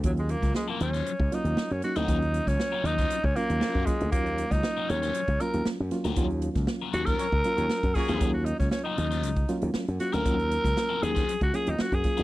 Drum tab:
HH |xxxx--xxx-xx-xxx|xxxx--xxx-xx--xx|xxxx--xxxxxx--xx|xxxx--xxx-xx-xox|
SD |---oo--o--o-o-o-|---oo--o--o-o-o-|---oo--o--o-o-o-|---oo--o--o-o-o-|
BD |o--o-----o------|o--o---o-o---oo-|o--o-----o------|o--o---o-o---oo-|

HH |x-xx--xxxxxx-xxx|xxxx--xxxxxx-xxx|
SD |---oo--o--o-o-o-|---oo--o--o-o-o-|
BD |o--o-----o------|o--o---o-o---oo-|